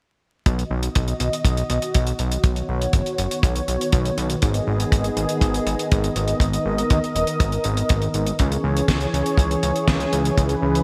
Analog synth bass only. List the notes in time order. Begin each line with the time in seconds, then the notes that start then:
0.46 B1
0.71 B1
0.96 B1
1.20 B1
1.45 B1
1.70 B1
1.95 B1
2.19 B1
2.44 B1
2.69 B1
2.93 F#1
3.19 F#1
3.43 B1
3.68 B1
3.93 B1
4.18 B1
4.43 G#1
4.67 G#1
4.92 G#1
5.17 G#1
5.41 G#1
5.66 G#1
5.92 G#1
6.16 G#1
6.40 G#1
6.66 G#1
6.91 D#2
7.15 D#1
7.40 G#1
7.65 G#1
7.90 G#1
8.14 G#1
8.40 C#2
8.64 C#2
8.88 C#2
9.14 C#2
9.38 C#2
9.63 C#2
9.88 C#2
10.13 C#2
10.38 C#2
10.62 C#2